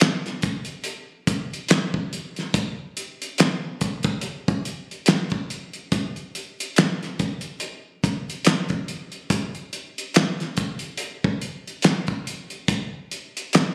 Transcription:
0.00 snare, clap, closed hi-hat
0.26 snare, closed hi-hat
0.42 kick, closed hi-hat
0.65 closed hi-hat
0.84 closed hi-hat
1.27 kick, closed hi-hat
1.53 closed hi-hat
1.69 snare, clap, closed hi-hat
1.94 kick
2.13 closed hi-hat
2.36 snare, closed hi-hat
2.54 kick, closed hi-hat
2.97 closed hi-hat
3.22 closed hi-hat
3.38 snare, clap, closed hi-hat
3.81 kick, closed hi-hat
4.03 kick, closed hi-hat
4.21 closed hi-hat
4.48 kick, closed hi-hat
4.65 closed hi-hat
4.91 closed hi-hat
5.06 snare, clap, closed hi-hat
5.30 kick, closed hi-hat
5.50 closed hi-hat
5.73 closed hi-hat
5.92 kick, closed hi-hat
6.16 closed hi-hat
6.35 closed hi-hat
6.60 closed hi-hat
6.76 snare, clap, closed hi-hat
7.03 snare, closed hi-hat
7.19 kick, closed hi-hat
7.41 closed hi-hat
7.60 closed hi-hat
8.04 kick, closed hi-hat
8.30 closed hi-hat
8.45 snare, clap, closed hi-hat
8.69 kick, closed hi-hat
8.88 closed hi-hat
9.12 closed hi-hat
9.30 kick, closed hi-hat
9.55 closed hi-hat
9.73 closed hi-hat
9.98 closed hi-hat
10.14 snare, clap, closed hi-hat
10.40 snare, closed hi-hat
10.57 kick, closed hi-hat
10.79 closed hi-hat
10.97 closed hi-hat
11.24 kick
11.42 closed hi-hat
11.68 closed hi-hat
11.82 snare, clap, closed hi-hat
12.07 kick, closed hi-hat
12.27 closed hi-hat
12.50 closed hi-hat
12.68 kick, closed hi-hat
13.11 closed hi-hat
13.37 closed hi-hat
13.53 snare, clap, closed hi-hat

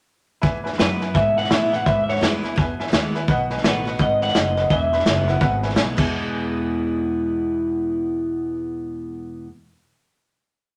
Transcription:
0.42 E2 B4 E5 G#5, kick, snare
0.64 B4 E5 G#5, snare
0.73 snare
0.78 F#2 E3 G#3 B3 E4 B4 E5 B5, snare, hi-hat pedal
1.01 B3 E4 B4 E5 G#5, snare
1.14 G#2 B2 B4 E5 G#5, kick, snare
1.37 B4 E5 F#5 G#5, snare
1.44 snare
1.50 A2 E3 G#3 B3 E4 B4 E5 B5, snare, hi-hat pedal
1.72 B3 E4 B4 E5 F#5, snare
1.86 E2 G#2 B4 E5 B5, kick, snare
2.04 E5
2.09 B4 C#5 E5 F#5, snare
2.16 snare
2.21 F#2 E3 G#3 B3 E4 B4 E5 G#5, snare, hi-hat pedal
2.43 B3 E4 B4 E5 G#5, muted upright bass stroke, snare
2.56 E2 B2 B4 E5 G#5, kick, snare
2.79 B4 E5 G#5, muted upright bass stroke, snare
2.87 snare
2.92 D#2 E3 G#3 B3 E4 B4 E5 G#5, snare, hi-hat pedal
3.15 B3 E4 B4 E5 G#5, snare
3.28 B1 B2 B4 D#5 F#5, kick, snare
3.50 B4 D#5 G#5, snare
3.57 snare
3.64 A1 D#3 A3 B3 F#4 B4 D#5 F#5, snare, hi-hat pedal
3.85 B3 F#4 B4 D#5 F#5, snare
3.99 G#1 G#2 B4 D#5 F#5, kick, snare
4.21 B4 D#5 F#5, snare
4.28 F#5, snare
4.35 F#1 F#2 B4 D#5 F#5, snare, hi-hat pedal
4.56 B4 D#5 F#5, snare
4.70 E1 E2 B4 E5 G#5, kick, snare
4.92 B4 E5 B5, snare
4.99 snare
5.05 F#1 E3 G#3 B3 E4 B4 G#5, snare, hi-hat pedal
5.27 B3 E4 B4 E5 F#5, snare
5.41 G#1 B2 B4 E5 F#5, kick, snare
5.63 B4 E5 G#5, snare
5.69 snare
5.76 B1 E3 G#3 B3 E4 B4 E5 G#5, snare, hi-hat pedal
5.95 E2 B2 E3 G#3 B3 E4 B4 E5 G#5, kick, crash

